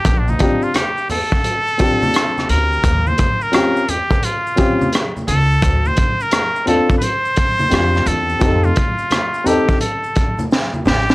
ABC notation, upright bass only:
X:1
M:4/4
L:1/8
Q:"Swing 16ths" 1/4=86
K:Bb
V:1 name="Upright bass" clef=bass
B,,, z6 D,, | E,, z6 _D,, | D,, z4 z F,, =E,, | F,, z6 A,,, |]